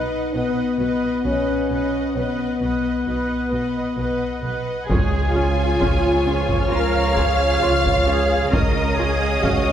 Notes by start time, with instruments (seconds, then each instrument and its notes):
Already playing: french horn section D#4, viola section B4, violin section D#5 F#5
0.34 double bass section B1, cello section B2, french horn section B3, viola section B4, violin section D#5 F#5
0.80 double bass section B1, cello section B2, viola section B4, violin section D#5 F#5
1.25 double bass section B1, cello section B2, french horn section C#4, viola section B4, violin section D#5 F#5
1.71 double bass section B1, cello section B2, viola section B4, violin section D#5 F#5
2.16 double bass section B1, cello section B2, french horn section B3, viola section B4, violin section D#5 F#5
2.62 double bass section B1, cello section B2, viola section B4, violin section D#5 F#5
3.07 double bass section B1, cello section B2, viola section B4, violin section D#5 F#5
3.52 double bass section B1, cello section B2, viola section B4, violin section D#5 F#5
3.97 double bass section B1, cello section B2, viola section B4, violin section D#5 F#5
4.43 double bass section B1, cello section B2, viola section B4, violin section D#5 F#5
4.88 double bass section C#2, trombone section C#3 F3, french horn section C#4, viola section C#4 F4, string section C#4 F4 C#5, cello section G#4, violin section G#4 G#5, trumpet section C#5, taiko
5.33 viola section C#4 F4, cello section F4
5.80 double bass section C#2, viola section C#4 F4, taiko
6.26 viola section C#4 F4
6.49 taiko
6.70 double bass section C#2, viola section C#4 F4, cello section A#4, violin section F5 F6
7.15 viola section C#4 F4, cello section G#4, taiko
7.61 double bass section C#2, viola section C#4 F4, cello section F4
7.85 taiko
8.07 viola section C#4 F4, cello section G#4
8.51 double bass section C#2, trombone section C#3 G#3, viola section C#4 F4, french horn section C#4, string section C#4 C#5 F5, cello section A#4, trumpet section C#5, violin section D#5 D#6, taiko
8.96 viola section C#4 F4, cello section G#4
9.42 double bass section C#2, viola section C#4 F5, cello section F#4, taiko